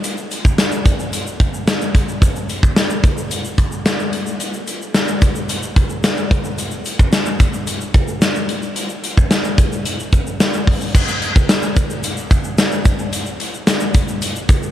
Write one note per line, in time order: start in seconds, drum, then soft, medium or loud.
0.04 closed hi-hat medium
0.04 shaker medium
0.17 shaker soft
0.31 closed hi-hat medium
0.31 shaker soft
0.45 kick medium
0.45 shaker soft
0.58 snare medium
0.58 closed hi-hat medium
0.58 shaker medium
0.72 shaker medium
0.85 kick medium
0.85 closed hi-hat medium
0.85 shaker soft
0.99 shaker soft
1.13 closed hi-hat medium
1.13 shaker medium
1.27 shaker medium
1.40 kick medium
1.40 closed hi-hat medium
1.54 shaker soft
1.68 snare loud
1.68 closed hi-hat medium
1.68 shaker medium
1.82 shaker soft
1.95 kick loud
1.95 closed hi-hat medium
2.09 shaker soft
2.22 kick loud
2.22 closed hi-hat medium
2.22 shaker medium
2.36 shaker soft
2.49 closed hi-hat medium
2.49 shaker soft
2.63 kick loud
2.63 shaker soft
2.76 snare loud
2.76 closed hi-hat medium
2.76 shaker medium
2.90 shaker medium
3.04 kick medium
3.04 closed hi-hat medium
3.04 shaker soft
3.18 shaker soft
3.31 closed hi-hat medium
3.31 shaker medium
3.45 shaker medium
3.58 kick medium
3.58 closed hi-hat medium
3.72 shaker soft
3.86 snare loud
3.86 closed hi-hat medium
3.86 shaker medium
3.99 shaker soft
4.13 closed hi-hat medium
4.26 shaker soft
4.40 closed hi-hat medium
4.40 shaker medium
4.53 shaker soft
4.67 closed hi-hat medium
4.67 shaker soft
4.82 shaker soft
4.94 snare loud
4.94 closed hi-hat medium
4.94 shaker medium
5.08 shaker medium
5.22 kick medium
5.22 closed hi-hat medium
5.22 shaker soft
5.35 shaker soft
5.49 closed hi-hat medium
5.49 shaker medium
5.63 shaker medium
5.76 kick medium
5.76 closed hi-hat medium
5.90 shaker soft
6.04 snare loud
6.04 closed hi-hat medium
6.04 shaker medium
6.17 shaker soft
6.31 kick loud
6.31 closed hi-hat medium
6.44 shaker soft
6.58 closed hi-hat medium
6.58 shaker medium
6.71 shaker soft
6.85 closed hi-hat medium
6.85 shaker soft
6.99 kick medium
6.99 shaker soft
7.13 snare loud
7.13 closed hi-hat medium
7.13 shaker medium
7.26 shaker medium
7.40 kick loud
7.40 closed hi-hat medium
7.40 shaker soft
7.54 shaker soft
7.67 closed hi-hat medium
7.67 shaker medium
7.81 shaker medium
7.94 kick medium
7.94 closed hi-hat medium
8.08 shaker soft
8.22 snare loud
8.22 closed hi-hat medium
8.22 shaker medium
8.35 shaker soft
8.49 closed hi-hat medium
8.62 shaker soft
8.76 closed hi-hat medium
8.76 shaker medium
8.89 shaker soft
9.04 closed hi-hat medium
9.17 kick medium
9.17 shaker soft
9.31 snare loud
9.31 closed hi-hat medium
9.31 shaker medium
9.44 shaker medium
9.58 kick medium
9.58 closed hi-hat medium
9.58 shaker soft
9.72 shaker medium
9.85 closed hi-hat medium
9.85 shaker medium
9.99 shaker medium
10.12 kick medium
10.12 closed hi-hat medium
10.12 shaker soft
10.27 shaker soft
10.40 snare loud
10.40 closed hi-hat medium
10.40 shaker medium
10.54 shaker soft
10.67 kick medium
10.67 open hi-hat medium
10.81 shaker soft
10.95 kick loud
10.95 crash loud
10.95 shaker medium
11.08 shaker soft
11.22 closed hi-hat medium
11.36 kick loud
11.36 shaker soft
11.49 snare loud
11.49 closed hi-hat medium
11.49 tambourine medium
11.49 shaker medium
11.62 shaker medium
11.76 kick loud
11.76 closed hi-hat medium
11.76 shaker soft
11.90 shaker medium
12.03 closed hi-hat loud
12.03 shaker medium
12.17 shaker medium
12.31 kick loud
12.31 closed hi-hat medium
12.31 shaker soft
12.44 shaker soft
12.58 snare loud
12.58 closed hi-hat medium
12.58 tambourine medium
12.58 shaker medium
12.72 shaker soft
12.85 kick loud
12.85 closed hi-hat medium
12.85 shaker medium
12.99 shaker soft
13.13 closed hi-hat medium
13.13 shaker medium
13.26 shaker soft
13.40 closed hi-hat medium
13.54 shaker soft
13.67 snare loud
13.67 closed hi-hat medium
13.67 tambourine medium
13.67 shaker medium
13.80 shaker medium
13.94 kick loud
13.94 closed hi-hat medium
13.94 shaker soft
14.08 shaker medium
14.22 closed hi-hat medium
14.22 shaker medium
14.36 shaker medium
14.49 kick loud
14.49 closed hi-hat medium
14.49 shaker medium
14.63 shaker soft